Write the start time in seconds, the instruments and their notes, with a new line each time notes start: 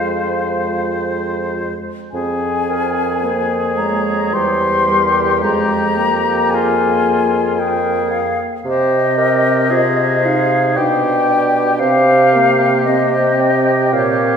Already playing: bassoon F2, french horn G#3, clarinet F4, oboe C5, flute F5
2.11 bassoon F2, french horn C4, clarinet G#4, oboe G#4, flute G#5
2.70 clarinet A#4
3.24 french horn A#3, clarinet C5
3.78 french horn G#3, clarinet C#5, flute A#5
4.33 bassoon E2, french horn G3, oboe G4, clarinet C5, flute C6
4.88 french horn G3, clarinet A#4
5.42 bassoon F2, french horn G#3, clarinet G#4, flute A#5
5.97 french horn A#3, clarinet G4
6.50 oboe F4, clarinet G#4, flute G#5
7.59 oboe G#4, clarinet A#4, flute G5
8.11 flute F5
8.65 bassoon C3, french horn C4, oboe G4, clarinet C5, flute D#5
9.17 oboe G4, clarinet A#4
9.71 french horn F4, oboe G#4, clarinet C5
10.26 french horn D#4, flute F5
10.76 bassoon B2, oboe G4, clarinet D5, flute G5
10.80 french horn D4
11.28 clarinet D5
11.79 bassoon C3, french horn C4, oboe G4, clarinet C5, flute F5
12.32 french horn A#3, clarinet A#4
12.84 french horn C4, clarinet C5, flute D#5
13.40 clarinet G5
13.93 bassoon A#2, flute C#5, clarinet F5